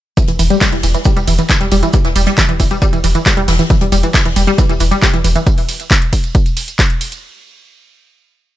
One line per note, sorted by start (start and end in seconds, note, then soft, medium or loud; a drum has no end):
0.17 0.23 E3 medium
0.17 kick loud
0.17 closed hi-hat medium
0.17 ride medium
0.17 tambourine soft
0.17 shaker loud
0.27 0.39 E1 medium
0.27 0.32 E3 medium
0.27 closed hi-hat soft
0.27 closed hi-hat medium
0.27 tambourine soft
0.39 0.50 E1 loud
0.39 0.43 E3 medium
0.39 open hi-hat loud
0.39 ride medium
0.39 tambourine medium
0.39 shaker medium
0.50 0.56 G3 medium
0.50 closed hi-hat medium
0.50 tambourine soft
0.61 0.65 G3 loud
0.61 kick loud
0.61 snare loud
0.61 clap loud
0.61 closed hi-hat medium
0.61 open hi-hat medium
0.61 ride medium
0.61 tambourine soft
0.72 0.83 E1 medium
0.72 0.78 E3 medium
0.72 closed hi-hat medium
0.83 0.94 E1 loud
0.83 0.87 E3 medium
0.83 open hi-hat loud
0.83 ride medium
0.83 tambourine medium
0.83 shaker medium
0.94 0.98 E3 medium
0.94 closed hi-hat medium
0.94 tambourine soft
1.05 1.11 G3 medium
1.05 kick loud
1.05 closed hi-hat medium
1.05 ride medium
1.05 tambourine soft
1.05 shaker medium
1.17 1.27 E1 medium
1.17 1.20 G3 loud
1.17 closed hi-hat medium
1.17 tambourine soft
1.27 1.38 E1 loud
1.27 1.33 E3 medium
1.27 open hi-hat loud
1.27 ride medium
1.27 tambourine medium
1.27 shaker medium
1.39 1.42 E3 medium
1.39 closed hi-hat medium
1.39 tambourine soft
1.49 1.53 E3 medium
1.49 kick loud
1.49 snare loud
1.49 clap loud
1.49 closed hi-hat medium
1.49 ride medium
1.49 shaker loud
1.60 1.71 E1 medium
1.60 1.66 G3 medium
1.60 snare soft
1.60 closed hi-hat medium
1.72 1.82 E1 loud
1.72 1.75 G3 loud
1.72 open hi-hat loud
1.72 ride medium
1.72 tambourine medium
1.72 shaker medium
1.83 1.88 E3 medium
1.83 closed hi-hat medium
1.83 tambourine soft
1.93 1.97 E3 medium
1.93 kick loud
1.93 closed hi-hat medium
1.93 ride medium
1.93 tambourine soft
1.93 shaker loud
2.04 2.15 E1 medium
2.04 2.08 E3 medium
2.04 snare soft
2.04 closed hi-hat medium
2.04 tambourine soft
2.16 2.27 E1 loud
2.16 2.21 G3 medium
2.16 open hi-hat loud
2.16 ride medium
2.16 tambourine medium
2.16 shaker medium
2.27 2.30 G3 loud
2.27 closed hi-hat medium
2.27 closed hi-hat soft
2.27 tambourine soft
2.37 2.43 E3 medium
2.37 kick loud
2.37 snare loud
2.37 clap loud
2.37 closed hi-hat medium
2.37 ride medium
2.37 tambourine soft
2.37 shaker medium
2.49 2.59 E1 medium
2.49 2.52 E3 medium
2.49 closed hi-hat medium
2.60 2.71 E1 loud
2.60 2.63 E3 medium
2.60 kick medium
2.60 open hi-hat loud
2.60 ride medium
2.60 tambourine medium
2.60 shaker medium
2.71 2.76 G3 medium
2.71 closed hi-hat medium
2.71 tambourine soft
2.82 2.85 G3 loud
2.82 kick loud
2.82 closed hi-hat medium
2.82 ride medium
2.82 tambourine soft
2.82 shaker medium
2.93 3.03 E1 medium
2.93 2.98 E3 medium
2.93 closed hi-hat medium
2.93 tambourine soft
3.04 3.15 E1 loud
3.04 3.07 E3 medium
3.04 open hi-hat loud
3.04 ride medium
3.04 tambourine medium
3.04 shaker medium
3.15 3.18 E3 medium
3.15 closed hi-hat medium
3.15 tambourine soft
3.26 3.32 G3 medium
3.26 kick loud
3.26 snare loud
3.26 clap loud
3.26 closed hi-hat medium
3.26 ride medium
3.26 tambourine soft
3.26 shaker medium
3.37 3.48 E1 medium
3.37 3.40 G3 loud
3.37 closed hi-hat medium
3.48 3.59 E1 loud
3.48 3.54 E3 medium
3.48 snare loud
3.48 open hi-hat loud
3.48 open hi-hat medium
3.48 ride medium
3.48 tambourine medium
3.59 3.63 E3 medium
3.59 closed hi-hat medium
3.59 tambourine soft
3.70 3.73 E3 medium
3.70 kick loud
3.70 closed hi-hat medium
3.70 ride medium
3.70 tambourine soft
3.70 shaker medium
3.81 3.92 E1 medium
3.81 3.87 G3 medium
3.81 closed hi-hat soft
3.81 closed hi-hat medium
3.81 tambourine soft
3.92 4.03 E1 loud
3.92 3.96 G3 loud
3.92 open hi-hat loud
3.92 ride medium
3.92 tambourine medium
3.92 shaker medium
4.03 4.09 E3 medium
4.03 closed hi-hat medium
4.03 tambourine soft
4.13 4.18 E3 medium
4.13 kick loud
4.13 snare loud
4.13 clap loud
4.13 closed hi-hat medium
4.13 open hi-hat medium
4.13 ride medium
4.13 tambourine soft
4.25 4.36 E1 medium
4.25 4.29 E3 medium
4.25 closed hi-hat medium
4.36 4.47 E1 loud
4.36 4.42 G3 medium
4.36 open hi-hat loud
4.36 ride medium
4.36 tambourine medium
4.36 shaker medium
4.47 4.51 G3 loud
4.47 closed hi-hat medium
4.47 tambourine soft
4.58 4.64 E3 medium
4.58 kick loud
4.58 closed hi-hat medium
4.58 ride medium
4.58 tambourine soft
4.58 shaker loud
4.69 4.80 E1 medium
4.69 4.73 E3 medium
4.69 closed hi-hat medium
4.69 tambourine soft
4.80 4.91 E1 loud
4.80 4.84 E3 medium
4.80 open hi-hat loud
4.80 ride medium
4.80 tambourine medium
4.80 shaker medium
4.91 4.97 G3 medium
4.91 closed hi-hat medium
4.91 tambourine soft
5.02 5.06 G3 loud
5.02 kick loud
5.02 snare loud
5.02 clap loud
5.02 closed hi-hat medium
5.02 ride medium
5.02 tambourine soft
5.02 shaker medium
5.13 5.24 E1 medium
5.13 5.19 E3 medium
5.13 snare soft
5.13 closed hi-hat medium
5.24 5.35 E1 loud
5.24 5.28 E3 medium
5.24 open hi-hat loud
5.24 ride medium
5.24 tambourine medium
5.24 shaker medium
5.36 5.39 E3 medium
5.36 closed hi-hat medium
5.36 tambourine soft
5.47 kick loud
5.47 closed hi-hat medium
5.47 ride medium
5.47 tambourine soft
5.58 open hi-hat medium
5.58 tambourine soft
5.69 open hi-hat loud
5.69 ride medium
5.69 tambourine medium
5.80 closed hi-hat medium
5.80 tambourine soft
5.91 kick loud
5.91 clap loud
5.91 closed hi-hat medium
5.91 ride medium
5.91 tambourine soft
6.02 closed hi-hat medium
6.13 kick medium
6.13 open hi-hat loud
6.13 ride medium
6.13 tambourine medium
6.24 closed hi-hat medium
6.24 tambourine soft
6.35 kick loud
6.35 closed hi-hat medium
6.35 ride medium
6.35 tambourine soft
6.46 closed hi-hat medium
6.46 tambourine soft
6.57 open hi-hat loud
6.57 ride medium
6.57 tambourine medium
6.68 closed hi-hat medium
6.68 tambourine soft
6.79 kick loud
6.79 clap loud
6.79 closed hi-hat medium
6.79 ride medium
6.79 tambourine soft
6.90 closed hi-hat medium
7.01 open hi-hat loud
7.01 ride medium
7.01 tambourine medium
7.12 closed hi-hat medium
7.12 tambourine soft